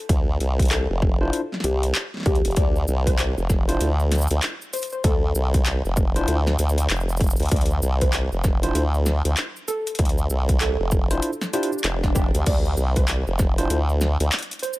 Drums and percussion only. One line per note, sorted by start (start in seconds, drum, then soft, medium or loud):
0.09 kick loud
0.09 closed hi-hat medium
0.40 closed hi-hat soft
0.59 kick medium
0.59 closed hi-hat soft
0.62 closed hi-hat soft
0.65 closed hi-hat soft
0.68 clap loud
0.68 closed hi-hat soft
0.71 closed hi-hat medium
1.02 kick loud
1.33 closed hi-hat medium
1.52 snare soft
1.54 snare soft
1.60 snare soft
1.60 closed hi-hat medium
1.83 closed hi-hat medium
1.95 clap loud
1.95 closed hi-hat medium
2.14 snare soft
2.17 snare soft
2.20 snare soft
2.23 kick loud
2.23 snare soft
2.23 closed hi-hat soft
2.35 closed hi-hat soft
2.45 closed hi-hat medium
2.51 closed hi-hat soft
2.56 kick loud
2.56 closed hi-hat medium
2.56 shaker soft
2.76 shaker soft
2.88 shaker medium
3.07 kick medium
3.07 closed hi-hat medium
3.07 shaker soft
3.19 clap loud
3.19 closed hi-hat medium
3.19 shaker soft
3.38 shaker soft
3.50 kick loud
3.50 snare soft
3.50 shaker medium
3.69 closed hi-hat medium
3.69 shaker soft
3.81 closed hi-hat medium
3.81 shaker soft
4.00 shaker soft
4.12 snare soft
4.12 closed hi-hat medium
4.12 shaker soft
4.15 shaker soft
4.18 shaker soft
4.21 shaker medium
4.27 closed hi-hat soft
4.27 shaker medium
4.31 shaker soft
4.42 clap loud
4.42 closed hi-hat medium
4.42 shaker soft
4.62 shaker soft
4.73 closed hi-hat soft
4.73 shaker medium
4.76 shaker medium
4.79 shaker soft
4.82 closed hi-hat medium
4.82 shaker soft
4.84 shaker soft
4.87 shaker soft
4.90 shaker soft
4.92 shaker soft
5.04 kick loud
5.04 closed hi-hat medium
5.04 shaker soft
5.35 shaker medium
5.54 kick medium
5.54 closed hi-hat soft
5.54 shaker soft
5.66 clap loud
5.66 closed hi-hat medium
5.66 shaker soft
5.85 shaker soft
5.97 kick loud
5.97 shaker medium
6.16 closed hi-hat medium
6.16 shaker soft
6.28 closed hi-hat medium
6.28 shaker soft
6.47 snare medium
6.47 shaker soft
6.59 closed hi-hat medium
6.59 shaker medium
6.69 shaker medium
6.78 closed hi-hat soft
6.78 shaker soft
6.79 shaker soft
6.90 clap loud
6.90 closed hi-hat medium
6.90 shaker soft
6.96 shaker soft
7.00 shaker soft
7.09 shaker soft
7.17 closed hi-hat soft
7.17 shaker soft
7.21 kick loud
7.21 shaker soft
7.24 shaker soft
7.27 shaker soft
7.30 shaker medium
7.36 closed hi-hat soft
7.36 shaker medium
7.40 closed hi-hat soft
7.40 shaker soft
7.46 closed hi-hat soft
7.49 kick loud
7.49 closed hi-hat soft
7.52 closed hi-hat medium
7.52 shaker soft
7.56 closed hi-hat soft
7.61 closed hi-hat soft
7.66 closed hi-hat soft
7.71 shaker soft
7.82 shaker medium
8.01 kick medium
8.01 closed hi-hat medium
8.01 shaker soft
8.13 clap loud
8.13 closed hi-hat medium
8.13 shaker soft
8.32 shaker soft
8.44 kick loud
8.44 snare soft
8.44 shaker medium
8.63 closed hi-hat medium
8.63 shaker soft
8.75 closed hi-hat medium
8.75 shaker soft
8.94 shaker soft
9.06 snare medium
9.06 shaker medium
9.25 closed hi-hat medium
9.37 clap loud
9.37 closed hi-hat medium
9.37 shaker soft
9.56 shaker soft
9.68 closed hi-hat soft
9.68 shaker medium
9.87 closed hi-hat soft
9.87 shaker soft
9.95 closed hi-hat soft
9.99 kick loud
9.99 closed hi-hat medium
10.05 closed hi-hat medium
10.09 closed hi-hat soft
10.18 shaker soft
10.30 shaker medium
10.49 kick medium
10.49 closed hi-hat medium
10.49 shaker soft
10.61 clap loud
10.61 closed hi-hat medium
10.61 shaker soft
10.92 kick loud
10.92 shaker medium
11.11 closed hi-hat medium
11.11 shaker soft
11.22 closed hi-hat medium
11.22 shaker soft
11.33 shaker soft
11.41 snare medium
11.41 shaker soft
11.43 shaker soft
11.53 closed hi-hat medium
11.53 shaker medium
11.63 closed hi-hat medium
11.73 shaker soft
11.78 shaker soft
11.84 clap loud
11.84 closed hi-hat medium
12.04 kick medium
12.04 snare soft
12.04 shaker soft
12.15 kick loud
12.15 closed hi-hat soft
12.15 shaker medium
12.35 closed hi-hat medium
12.35 shaker soft
12.46 kick loud
12.46 closed hi-hat medium
12.46 crash medium
12.46 shaker soft
12.65 shaker soft
12.77 shaker medium
12.96 kick medium
12.96 closed hi-hat medium
12.96 shaker soft
13.08 clap loud
13.08 closed hi-hat medium
13.08 shaker soft
13.27 shaker soft
13.39 kick loud
13.39 snare soft
13.39 shaker medium
13.58 closed hi-hat medium
13.58 shaker soft
13.70 closed hi-hat medium
13.70 shaker soft
13.89 shaker soft
14.01 snare medium
14.01 shaker medium
14.20 closed hi-hat medium
14.20 shaker soft
14.32 clap loud
14.32 closed hi-hat medium
14.32 shaker soft
14.39 closed hi-hat medium
14.42 closed hi-hat soft
14.51 closed hi-hat soft
14.51 shaker soft
14.53 closed hi-hat soft
14.59 closed hi-hat soft
14.63 closed hi-hat soft
14.63 shaker medium
14.73 shaker medium